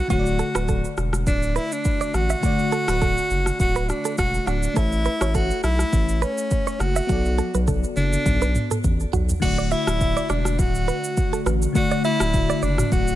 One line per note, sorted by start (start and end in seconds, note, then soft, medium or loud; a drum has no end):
0.08 0.42 D1 loud
0.08 2.38 D3 medium
0.08 2.39 A3 medium
0.08 0.19 F#4 medium
0.08 0.96 F#4 loud
0.08 2.40 F#4 medium
0.08 kick loud
0.08 shaker medium
0.13 0.19 C#5 medium
0.19 2.44 D5 medium
0.26 shaker soft
0.39 0.48 A4 medium
0.39 shaker medium
0.55 0.85 D1 medium
0.55 0.63 B4 medium
0.55 cross-stick loud
0.55 shaker medium
0.68 0.85 A4 medium
0.68 kick medium
0.68 shaker medium
0.85 shaker medium
0.97 1.28 E1 medium
0.97 cross-stick medium
0.97 shaker medium
1.13 cross-stick medium
1.13 shaker medium
1.27 1.59 D1 loud
1.27 1.58 D4 loud
1.27 kick loud
1.27 shaker medium
1.43 shaker medium
1.56 1.74 E4 loud
1.56 1.65 B4 medium
1.56 shaker medium
1.72 2.16 D4 medium
1.72 shaker loud
1.85 kick loud
1.85 shaker medium
2.01 2.08 D5 medium
2.01 shaker medium
2.14 2.35 A1 loud
2.14 3.60 F#4 loud
2.14 cross-stick medium
2.14 shaker medium
2.30 2.37 E5 medium
2.30 shaker loud
2.41 4.71 D3 medium
2.41 4.72 A3 medium
2.41 2.52 F#4 medium
2.41 4.73 F#4 medium
2.41 kick loud
2.41 shaker medium
2.46 4.73 D5 medium
2.59 shaker soft
2.72 2.89 A4 medium
2.72 shaker soft
2.88 3.18 D1 loud
2.88 2.96 B4 medium
2.88 cross-stick loud
2.88 shaker medium
3.01 3.18 A4 medium
3.01 kick medium
3.01 shaker medium
3.18 shaker medium
3.30 3.51 F#1 medium
3.30 shaker medium
3.46 cross-stick medium
3.46 shaker loud
3.60 3.92 D1 loud
3.60 3.91 F#4 loud
3.60 kick loud
3.60 shaker medium
3.76 3.83 B4 medium
3.76 shaker medium
3.89 4.18 D4 medium
3.89 cross-stick medium
3.89 shaker medium
4.05 4.12 A4 medium
4.05 shaker loud
4.18 4.39 E1 medium
4.18 4.49 F#4 loud
4.18 kick medium
4.18 cross-stick medium
4.18 shaker medium
4.34 shaker medium
4.47 4.68 D1 medium
4.47 4.78 D4 medium
4.47 4.56 F#4 medium
4.47 cross-stick medium
4.47 shaker medium
4.63 shaker loud
4.74 5.08 A1 loud
4.74 7.04 A3 medium
4.74 5.37 E4 loud
4.74 7.05 A4 medium
4.74 4.85 A4 medium
4.74 7.06 C#5 medium
4.74 kick loud
4.74 shaker medium
4.79 7.07 E5 medium
4.92 shaker soft
5.05 5.14 B4 medium
5.05 shaker medium
5.21 5.51 A1 loud
5.21 5.29 C#5 medium
5.21 cross-stick loud
5.21 shaker medium
5.34 5.63 F#4 loud
5.34 5.51 A4 medium
5.34 kick medium
5.34 shaker medium
5.50 shaker medium
5.63 5.84 B1 medium
5.63 6.24 E4 loud
5.63 cross-stick medium
5.63 shaker medium
5.79 cross-stick medium
5.79 shaker medium
5.93 6.25 A1 loud
5.93 kick loud
5.93 shaker medium
6.09 shaker medium
6.22 6.82 C#4 medium
6.22 6.31 B4 medium
6.22 shaker medium
6.38 shaker loud
6.51 kick loud
6.51 shaker medium
6.67 6.74 C#5 medium
6.67 shaker medium
6.80 7.01 F#1 medium
6.80 7.70 F#4 loud
6.80 cross-stick medium
6.80 shaker medium
6.96 7.03 E5 medium
6.96 shaker loud
7.07 7.41 B1 loud
7.07 9.37 B3 medium
7.07 9.38 F#4 medium
7.07 7.18 F#4 medium
7.07 9.39 A4 medium
7.07 kick loud
7.07 high tom medium
7.07 shaker medium
7.12 9.40 D5 medium
7.25 shaker soft
7.38 7.47 A4 medium
7.38 high tom medium
7.38 shaker medium
7.54 7.84 B1 loud
7.54 7.62 B4 medium
7.54 high tom medium
7.54 shaker medium
7.68 7.84 A4 medium
7.68 kick medium
7.68 mid tom medium
7.68 shaker medium
7.84 shaker medium
7.96 8.17 F#1 medium
7.96 8.80 D4 loud
7.96 mid tom medium
7.96 shaker medium
8.13 mid tom medium
8.13 shaker loud
8.26 8.58 B1 loud
8.26 kick loud
8.26 mid tom medium
8.26 shaker medium
8.42 8.49 B4 medium
8.42 shaker medium
8.55 mid tom medium
8.55 shaker medium
8.71 8.78 A4 medium
8.71 mid tom medium
8.71 shaker loud
8.84 9.05 A1 medium
8.84 kick medium
8.84 floor tom medium
8.84 shaker medium
9.00 shaker medium
9.13 9.34 B1 loud
9.13 9.22 F#4 medium
9.13 floor tom loud
9.13 shaker medium
9.29 floor tom medium
9.29 shaker medium
9.40 9.74 D1 loud
9.40 11.70 D3 medium
9.40 13.15 D3 medium
9.40 11.71 A3 medium
9.40 13.15 A3 medium
9.40 13.15 F#4 medium
9.40 9.73 F#4 loud
9.40 11.72 F#4 medium
9.40 kick loud
9.40 crash medium
9.40 shaker medium
9.45 11.73 D5 medium
9.58 9.66 D5 medium
9.58 shaker soft
9.71 10.31 E4 loud
9.71 9.80 E5 medium
9.71 shaker medium
9.87 10.17 D1 loud
9.87 cross-stick loud
9.87 shaker medium
10.01 kick medium
10.01 shaker medium
10.17 10.24 D5 medium
10.17 shaker medium
10.29 10.60 E1 medium
10.29 10.61 D4 medium
10.29 10.39 D5 medium
10.29 cross-stick medium
10.29 shaker medium
10.45 cross-stick medium
10.45 shaker loud
10.59 10.91 D1 loud
10.59 11.46 F#4 loud
10.59 kick loud
10.59 shaker medium
10.75 shaker medium
10.88 10.97 B4 medium
10.88 shaker medium
11.04 shaker loud
11.17 kick loud
11.17 shaker medium
11.33 11.40 A4 medium
11.33 shaker medium
11.46 11.67 A1 loud
11.46 11.55 B4 medium
11.46 cross-stick medium
11.46 shaker medium
11.62 shaker loud
11.73 13.15 D3 medium
11.73 13.15 A3 medium
11.73 12.03 F#4 loud
11.73 13.15 F#4 medium
11.73 kick loud
11.73 shaker medium
11.78 13.15 D5 medium
11.91 11.99 D5 medium
11.91 shaker soft
12.04 12.65 E4 loud
12.04 12.13 E5 medium
12.04 shaker medium
12.20 12.50 D1 loud
12.20 cross-stick loud
12.20 shaker medium
12.34 kick medium
12.34 shaker medium
12.50 12.57 D5 medium
12.50 shaker medium
12.63 12.83 F#1 medium
12.63 12.92 D4 medium
12.63 12.72 D5 medium
12.63 shaker medium
12.78 cross-stick medium
12.78 mid tom medium
12.78 shaker loud
12.92 13.15 D1 loud
12.92 13.15 F#4 loud
12.92 kick loud
12.92 shaker medium
13.08 shaker medium